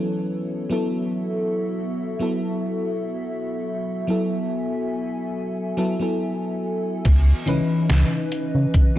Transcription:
Already playing: ambient pad E3 C#4 B4 C#5, fm electric piano F#3 B3 E4 A4
0.29 ambient pad B3 F#4 A4 E5
0.70 fm electric piano F#3 B3 E4 A4
2.19 fm electric piano F#3 B3 E4 A4
3.67 ambient pad G#5
4.07 fm electric piano F#3 B3 E4 A4
5.77 fm electric piano F#3 B3 E4 A4
5.99 fm electric piano F#3 B3 E4 A4
7.05 analog synth bass C#2, ambient pad E3 C#4 B4 D#5, kick, closed hi-hat, crash
7.46 analog synth bass C#2, fm electric piano E3 C#4 D#4 B4, closed hi-hat
7.90 analog synth bass C#2, snare, closed hi-hat
8.32 closed hi-hat
8.55 analog synth bass C#3
8.74 analog synth bass C#3, kick, closed hi-hat
8.96 fm electric piano E3

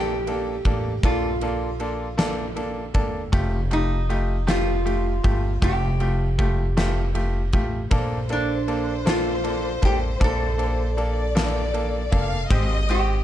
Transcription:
Already playing: upright bass A#1, grand piano A#3 D4 A4, resonator guitar played with a steel bar G4
0.27 grand piano A#3 D4 A4, ride
0.65 upright bass A1, grand piano A#3 D4 A4, kick, ride
1.03 upright bass A#1, grand piano A#3 D4 A4, resonator guitar played with a steel bar F4, kick, ride
1.41 grand piano A#3 D4 A4, ride
1.80 grand piano A#3 D4 A4, ride
2.17 grand piano A#3 D4 A4, snare, ride
2.56 grand piano A#3 D4 A4, ride
2.94 upright bass G1, grand piano A#3 D4 A4, kick, ride
3.32 upright bass F1, grand piano A3 F4 G4, kick, ride
3.71 grand piano A3 F4 G4, resonator guitar played with a steel bar D#4, ride
4.09 grand piano A3 F4 G4, ride
4.47 grand piano A3 F4 G4, resonator guitar played with a steel bar F4, snare, ride
4.85 grand piano A3 F4 G4, ride
5.24 upright bass G1, grand piano A3 F4 G4, kick, ride
5.62 upright bass F1, grand piano A3 F4 G4, resonator guitar played with a steel bar G4, kick, ride
6.00 grand piano A3 F4 G4, ride
6.38 grand piano A3 F4 G4, kick, ride
6.77 grand piano A3 F4 G4, snare, ride
7.15 grand piano A3 F4 G4, ride
7.53 upright bass A1, grand piano A3 F4 G4, kick, ride
7.91 upright bass A#1, grand piano A#3 D4 A4, violin section C5, kick, ride
8.29 grand piano A#3 D4 A4, resonator guitar played with a steel bar D4, ride
8.68 grand piano A#3 D4 A4, ride
9.05 grand piano A#3 D4 A4, resonator guitar played with a steel bar F4, snare, ride
9.44 grand piano A#3 D4 A4, ride
9.82 upright bass A1, grand piano A#3 D4 A4, resonator guitar played with a steel bar G4, kick, ride
10.20 upright bass A#1, grand piano A#3 D4 A4, kick, ride
10.24 resonator guitar played with a steel bar A4
10.58 grand piano A#3 D4 A4, ride
10.97 grand piano A#3 D4 A4, violin section D5, ride
11.35 grand piano A#3 D4 A4, snare, ride
11.74 grand piano A#3 D4 A4, ride
12.12 upright bass F1, grand piano A#3 D4 A4, violin section F5, kick, ride
12.49 upright bass G#1, grand piano G#3 C4 G4, violin section D#5, kick, ride
12.89 grand piano G#3 C4 G4, resonator guitar played with a steel bar G4, ride

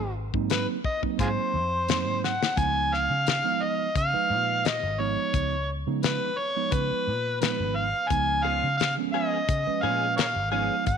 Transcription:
Already playing: fingered electric bass G#1, harmonica C5
0.34 fingered electric bass G#2, tine electric piano F#3 A#3 C4 D#4, kick
0.50 harmonica B4, snare, closed hi-hat
0.84 harmonica D#5, kick
1.02 tine electric piano F#3 A#3 C4 D#4, kick
1.19 fingered electric bass G#2, harmonica F4 G#4 C5, kick, closed hi-hat
1.38 muted fingered electric bass stroke
1.54 fingered electric bass F2
1.88 tine electric piano F#3 A#3 C4 D#4, snare, closed hi-hat
2.07 fingered electric bass G#2
2.24 harmonica F#5, snare
2.43 snare
2.57 fingered electric bass C#2, tine electric piano F3 G#3 B3 D#4, harmonica G#5, kick, closed hi-hat
2.94 harmonica F5, snare
3.10 fingered electric bass C#3
3.27 snare, closed hi-hat
3.44 tine electric piano F3 G#3 B3 D#4
3.63 harmonica D#5
3.95 fingered electric bass C#3, harmonica F5, kick, closed hi-hat
4.13 tine electric piano F3 G#3 D#4 B4, muted fingered electric bass stroke
4.30 fingered electric bass A#2
4.65 harmonica D#5, snare, closed hi-hat
4.83 fingered electric bass G#1
4.99 tine electric piano F3 G#3 B3 D#4, harmonica C#5
5.34 fingered electric bass C#2, kick, closed hi-hat
5.87 fingered electric bass C#3, tine electric piano F3 G#3 B3 D#4
6.03 harmonica B4, snare, closed hi-hat
6.38 harmonica C#5
6.56 tine electric piano F3 G#3 B3 D#4
6.72 fingered electric bass C#3, harmonica B4, kick, closed hi-hat
6.91 muted fingered electric bass stroke
7.07 fingered electric bass A#2
7.41 tine electric piano F3 G#3 B3 D#4, harmonica B4, snare, closed hi-hat
7.60 fingered electric bass G#1
7.76 harmonica F5
8.09 fingered electric bass C#2, tine electric piano F3 G#3 B3 D#4, harmonica G#5, kick, closed hi-hat
8.44 clean electric guitar F3 B3 C#4 G#4, harmonica F5
8.63 fingered electric bass C#3
8.77 harmonica F5, snare, closed hi-hat
8.97 tine electric piano F3 G#3 B3 C#4
9.13 clean electric guitar F3 B3 C#4 G#4, harmonica D#5
9.49 fingered electric bass C#3, kick, closed hi-hat
9.67 tine electric piano F3 G#3 C#4 B4, muted fingered electric bass stroke
9.82 fingered electric bass A#2, clean electric guitar F3 B3 C#4 G#4, harmonica F5
10.17 harmonica A#4 C#5 F5, snare, closed hi-hat
10.36 fingered electric bass G#1
10.51 tine electric piano F3 G#3 B3 D#4, clean electric guitar F3 B3 C#4 G#4, harmonica F5
10.86 fingered electric bass G#1, harmonica F#5, kick, closed hi-hat

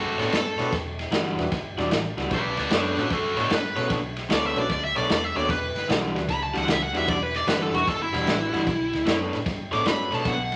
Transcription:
Already playing: fingered electric bass G2, lead electric guitar F#4 A4
0.19 fingered electric bass A2, overdriven electric guitar B3 D4 A4 C#5, lead electric guitar F#4, snare, ride
0.23 lead electric guitar A4
0.32 fingered electric bass G2, lead electric guitar A4, snare, ride
0.58 fingered electric bass B2, overdriven electric guitar B3 D4 A4 C#5, tonewheel organ D4 E4 F#4 G4 B4, snare, ride
0.72 fingered electric bass E1, kick, snare, ride
0.99 snare, ride
1.11 fingered electric bass G1, overdriven electric guitar E3 G3 D4 F#4, snare, ride
1.38 fingered electric bass E1, tonewheel organ D4 E4 F#4 G4 B4, snare, ride
1.52 fingered electric bass G1, kick, snare, ride
1.77 fingered electric bass E1, overdriven electric guitar E3 G3 D4 F#4, tonewheel organ D4 E4 F#4 G4 D5, snare, ride
1.91 fingered electric bass A1, snare, ride
2.17 fingered electric bass C#2, overdriven electric guitar E3 G3 D4 F#4, snare, ride
2.31 fingered electric bass B1, lead electric guitar B4 D5, kick, snare, ride
2.57 fingered electric bass D2, lead electric guitar B4 D5, snare, ride
2.70 fingered electric bass F#2, overdriven electric guitar B3 D4 A4 C#5, lead electric guitar D4 B4, snare, ride
2.97 fingered electric bass A2, tonewheel organ C#4 D4 F#4 A4 B4, lead electric guitar D4 B4, snare, ride
3.10 fingered electric bass G2, lead electric guitar F#4 A4, kick, snare, ride
3.37 fingered electric bass A2, overdriven electric guitar B3 D4 A4 C#5, lead electric guitar F#4 A4, snare, ride
3.50 fingered electric bass G2, lead electric guitar B4, snare, ride
3.76 fingered electric bass B2, overdriven electric guitar B3 D4 A4 C#5, tonewheel organ C#4 D4 F#4 A4 B4, snare, ride
3.90 fingered electric bass B1, kick, snare, ride
4.17 snare, ride
4.29 fingered electric bass D2, overdriven electric guitar B3 D4 A4 C#5, snare, ride
4.33 lead electric guitar D5
4.46 lead electric guitar E5
4.56 fingered electric bass B1, tonewheel organ C#4 D4 F#4 A4 B4, lead electric guitar D5, snare, ride
4.69 fingered electric bass D2, lead electric guitar D5, kick, snare, ride
4.84 lead electric guitar E5
4.96 fingered electric bass B1, overdriven electric guitar B3 D4 A4 C#5, lead electric guitar D5, snare, ride
5.09 fingered electric bass E2, lead electric guitar D5, snare, ride
5.24 lead electric guitar E5
5.35 fingered electric bass D#2, overdriven electric guitar B3 D4 A4 C#5, tonewheel organ D4 E4 F#4 G4 C#5, lead electric guitar D5, snare, ride
5.49 fingered electric bass E1, lead electric guitar B4, kick, snare, ride
5.75 fingered electric bass G1, snare, ride
5.88 fingered electric bass B1, overdriven electric guitar E3 G3 D4 F#4, snare, ride
6.15 fingered electric bass D2, tonewheel organ D4 E4 F#4 G4 B4, snare, ride
6.28 fingered electric bass C#2, lead electric guitar B5, kick, snare, ride
6.43 lead electric guitar A5
6.54 fingered electric bass D2, overdriven electric guitar E3 G3 D4 F#4, lead electric guitar F#5, snare, ride
6.68 fingered electric bass C#2, lead electric guitar E5, snare, ride
6.83 lead electric guitar F#5
6.93 fingered electric bass E2, overdriven electric guitar E3 G3 D4 F#4, tonewheel organ D4 E4 F#4 G4 B4, snare, ride
6.98 lead electric guitar E5
7.08 fingered electric bass E1, lead electric guitar D5, kick, snare, ride
7.23 lead electric guitar B4
7.34 lead electric guitar D5, snare, ride
7.47 fingered electric bass G1, overdriven electric guitar E3 G3 D4 F#4, lead electric guitar B4, snare, ride
7.62 lead electric guitar A4
7.73 fingered electric bass E1, tonewheel organ D4 E4 F#4 G4 B4, lead electric guitar F#4, snare, ride
7.87 fingered electric bass G1, lead electric guitar A4, kick, snare, ride
8.02 lead electric guitar E4
8.13 fingered electric bass E1, overdriven electric guitar E3 G3 D4 F#4, snare, ride
8.26 fingered electric bass A1, tonewheel organ D4 E4 F#4 G4 B4, snare, ride
8.53 fingered electric bass G1, overdriven electric guitar E3 G3 D4 F#4, snare, ride
8.67 fingered electric bass B1, kick, snare, ride
8.93 fingered electric bass D2, snare, ride
9.06 fingered electric bass F#2, overdriven electric guitar B3 D4 A4 C#5, snare, ride
9.33 fingered electric bass A2, snare, ride
9.46 fingered electric bass G2, kick, snare, ride
9.72 fingered electric bass A2, overdriven electric guitar B3 D4 A4 C#5, lead electric guitar D6, snare, ride
9.85 fingered electric bass G2, tonewheel organ C#4 D4 F#4 A4 B4, lead electric guitar B5, snare, ride
10.11 fingered electric bass B2, overdriven electric guitar B3 D4 A4 C#5, lead electric guitar A5, snare, ride
10.25 fingered electric bass B1, lead electric guitar F#5, kick, snare, ride
10.52 snare, ride

